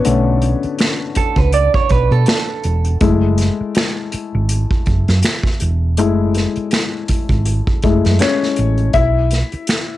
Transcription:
Already playing: B3 C#4 D4 B4 C#5 D5
0.05 B1 D3 A3 C#4, closed hi-hat
0.42 closed hi-hat
0.63 muted fingered electric bass stroke, closed hi-hat
0.78 finger snap, snare, closed hi-hat
1.15 A4, muted fingered electric bass stroke, kick, closed hi-hat
1.36 C#2 B4, kick, closed hi-hat
1.52 D5, closed hi-hat
1.74 C#5, kick
1.89 B1 B4, kick, closed hi-hat
2.11 B2 A4, closed hi-hat
2.26 finger snap, snare, closed hi-hat
2.63 E1, closed hi-hat
2.85 closed hi-hat
3.01 F#1 G#3 A3 E4, kick, closed hi-hat
3.38 snare, closed hi-hat
3.61 muted fingered electric bass stroke
3.75 finger snap, snare, closed hi-hat
4.12 muted fingered electric bass stroke, closed hi-hat
4.35 G#1
4.49 closed hi-hat
4.71 kick
4.86 F#1, kick, closed hi-hat
5.08 F#2, snare, closed hi-hat
5.23 finger snap, snare, closed hi-hat
5.44 kick, snare
5.60 E1, closed hi-hat
5.97 F#1 G#3 A3 E4, closed hi-hat
6.34 snare, closed hi-hat
6.56 muted fingered electric bass stroke, closed hi-hat
6.71 finger snap, snare, closed hi-hat
7.08 muted fingered electric bass stroke, kick, closed hi-hat
7.29 G#1, kick, closed hi-hat
7.45 closed hi-hat
7.67 kick
7.82 F#1 G#3 A3 E4, kick, closed hi-hat
8.05 F#2, snare, closed hi-hat
8.19 C#4 C#5, finger snap, snare, closed hi-hat
8.43 snare
8.56 A1, closed hi-hat
8.78 closed hi-hat
8.93 B1 E4 E5, kick, closed hi-hat
9.31 snare, closed hi-hat
9.52 muted fingered electric bass stroke, closed hi-hat
9.67 finger snap, snare, closed hi-hat

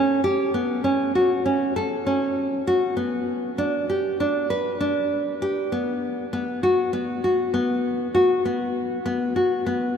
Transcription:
Already playing: C#4
0.24 G4
0.54 B3
0.84 C#4
1.15 F#4
1.46 C#4
1.76 A4
2.06 C#4
2.67 F#4
2.97 B3
3.58 D4
3.90 G4
4.20 D4
4.50 B4
4.80 D4
5.42 G4
5.72 B3
6.33 B3
6.63 F#4
6.93 B3
7.24 F#4
7.54 B3
8.15 F#4
8.45 B3
9.06 B3
9.36 F#4
9.66 B3

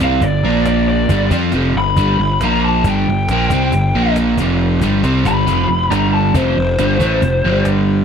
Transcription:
0.00 C2 C3 G3 C4 F5
0.21 G1 G2 D3 D5, cajon bass
0.43 A#1 A#2 F3 A#3
0.65 D5, cajon slap
0.89 D5
1.09 G1 G2 D3 G3, cajon bass
1.30 F2 F3 C4 F4, cajon bass
1.52 F1 F2 C3 F3, cajon slap
1.75 G1 G2 D3 B5
1.96 G1 G2 D3 G3, cajon bass
2.18 G1 G2 D3
2.41 A#1 A#2 F3 A#3, cajon slap
2.45 A#5
2.65 A5
2.84 G1 G2 D3 G3, cajon bass
2.89 G5
3.07 G1 G2 D3
3.28 A#1 A#2, cajon slap
3.32 F3 A#3
3.50 C2 C3 G3 C4, cajon bass
3.72 G1 G2 D3, cajon bass
3.95 A#1 A#2 F3 A#3
4.05 cajon slap
4.16 cajon slap
4.38 F1 F2 C3 F3, cajon bass
4.81 G1 G2 D3 G3, cajon bass
5.03 C2 C3 G3 C4, cajon slap
5.24 G1 G2 D3 G3 B5, cajon bass
5.46 F1 F2 C3 F3, cajon bass
5.68 F1 F2 C3
5.91 G1 G2 D3 G3 A#5, cajon slap
6.14 A5
6.34 F1 F2 C3 F3 C5, cajon bass
6.57 F1 F2 C3
6.79 G1 G2 D3 G3, cajon slap
6.99 A1 A2 E3 A3, cajon bass
7.22 F1 F2 C3, cajon bass
7.45 G1 G2 D3 G3
7.65 cajon slap

